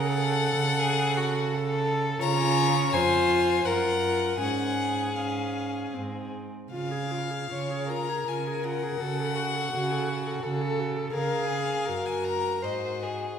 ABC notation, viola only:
X:1
M:3/4
L:1/16
Q:1/4=82
K:Db
V:1 name="Viola"
=A12 | F4 F4 F4 | D4 D4 C3 z | F A F A F A F A F A F A |
G =A G A G A G A G A G A | A4 G4 G4 |]